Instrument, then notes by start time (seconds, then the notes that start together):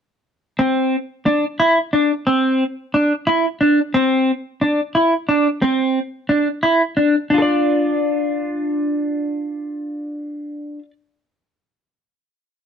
clean electric guitar
0.59 C4
1.26 D4
1.60 E4
1.93 D4
2.27 C4
2.94 D4
3.27 E4
3.61 D4
3.94 C4
4.61 D4
4.95 E4
5.29 D4
5.62 C4
6.29 D4
6.63 E4
6.97 D4
7.30 D4 F4
7.38 A4 D5